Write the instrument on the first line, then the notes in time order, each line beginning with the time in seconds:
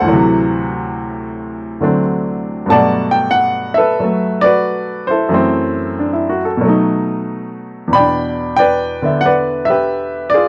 upright piano
Already playing: A4 C5 F#5
0.01 D2 A2
0.06 E3 F#3
0.13 C3
1.81 D3 F#3 A3 C4 D4
2.66 G2 F#3 A3
2.70 B2 D5 F#5 A5
3.11 G5
3.31 F#5
3.74 A4 B4 E5
4.00 F#3 A3
4.41 F#4 B4 D5
5.07 E4 A4 C5
5.29 F#2 E3 A3
5.34 C4
5.99 D4
6.13 E4
6.29 F#4
6.45 A4
6.57 B2 F#3
6.65 A3 D#4
7.88 E2 B2
7.93 D5 G5 B5
7.99 D4
8.56 B4 D5 G5
9.02 D3 B3 E5
9.21 F#5
9.26 B4 D5
9.65 E5
9.70 G4 B4
10.30 D5
10.34 F4 G#4